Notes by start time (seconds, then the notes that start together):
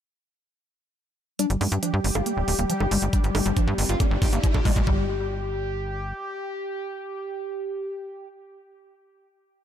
1.39 G3 D4 G4, closed hi-hat, riser
1.50 G1 G3, closed hi-hat
1.61 G2 G3 G#3, open hi-hat, high bongo
1.72 G2 G3, closed hi-hat
1.83 F3 D4, closed hi-hat
1.94 G2 G3
2.04 G1 G3 G#3 C4, open hi-hat
2.15 G1 G#3 C4 F4, high bongo
2.26 G3 A#3, closed hi-hat
2.37 D1 G3
2.48 D1 G#3 G4, open hi-hat
2.59 D1 G3 A#3, closed hi-hat
2.70 F3 G3, closed hi-hat
2.80 G1 G3 G4, high bongo
2.91 G1 G3 G#3, open hi-hat
3.02 G1 G3 G#3, closed hi-hat
3.13 G3 D4, kick, closed hi-hat
3.24 G1 G3, closed hi-hat
3.35 G1 G3 G#3 A#3, open hi-hat, high bongo
3.46 G1 G3 D4, closed hi-hat
3.57 F3 D4, kick, closed hi-hat
3.67 G2 G3
3.78 G1 G3 G#3 A#3, open hi-hat
3.89 G1 G#3 A#3 F4, closed hi-hat
4.00 G3 A#3, kick, closed hi-hat, high bongo
4.11 G1 G3
4.22 G1 G#3 G4, kick, open hi-hat
4.33 G1 G3 A#3, closed hi-hat
4.44 F3 G3, kick, closed hi-hat
4.54 A#1 G3 G4, kick, high bongo
4.65 A#1 G3 G#3, kick, open hi-hat
4.76 A#1 G3 G#3, kick, closed hi-hat
4.87 G1 G3 G4, kick